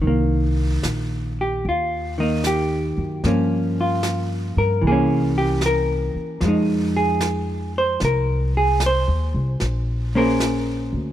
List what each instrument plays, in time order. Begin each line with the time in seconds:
0.02 upright bass C2, hollow-body jazz guitar D#3, brush sweep
0.07 hollow-body jazz guitar A#3
0.83 upright bass A#1, snare, hi-hat pedal
1.41 hollow-body jazz guitar G4
1.64 upright bass D#2, brush sweep
1.69 hollow-body jazz guitar F4
2.18 hollow-body jazz guitar D#3 A#3 D#4
2.44 hollow-body jazz guitar G4, snare, hi-hat pedal
2.97 upright bass F#2
3.24 upright bass G2, hollow-body jazz guitar F3 A#3 C#4, brush sweep, snare
3.81 hollow-body jazz guitar F4
4.03 snare, hi-hat pedal
4.57 upright bass G2, hollow-body jazz guitar A#4
4.82 upright bass C2, hollow-body jazz guitar E3, brush sweep
4.87 hollow-body jazz guitar A#3 G#4
4.92 hollow-body jazz guitar C#4
5.38 hollow-body jazz guitar G4
5.61 snare, hi-hat pedal
5.66 hollow-body jazz guitar A#4
6.15 muted upright bass stroke
6.41 upright bass F2, hollow-body jazz guitar F3, brush sweep, snare
6.45 hollow-body jazz guitar G#3 D#4
6.97 hollow-body jazz guitar G#4
7.21 snare, hi-hat pedal
7.78 hollow-body jazz guitar C5
8.00 upright bass C2, brush sweep, snare
8.05 hollow-body jazz guitar A#4
8.57 hollow-body jazz guitar G#4
8.80 snare, hi-hat pedal
8.86 hollow-body jazz guitar C5
9.08 upright bass D#2
9.34 upright bass C2
9.60 upright bass A#1, brush sweep, snare
10.15 hollow-body jazz guitar A#3 C#4 G#4 A#4 C5
10.40 snare, hi-hat pedal
10.93 upright bass D2